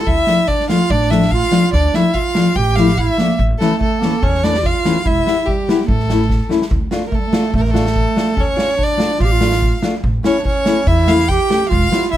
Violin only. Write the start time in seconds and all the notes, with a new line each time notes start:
0.06 E5
0.47 D5
0.70 F5
0.90 D5
1.11 E5
1.31 F5
1.73 D5
1.95 E5
2.14 F5
2.56 G5
2.76 F5
2.98 E5
3.59 A4
3.82 A4
4.23 C#5
4.44 D5
4.66 F5
5.06 E5
5.45 G4
5.88 A4
7.07 A#4
7.15 A4
7.56 A4
7.61 A#4
7.71 A4
8.40 C#5
8.83 D5
9.23 F5
10.26 C#5
10.47 C#5
10.87 E5
11.08 F5
11.28 G5
11.69 F5
12.11 E5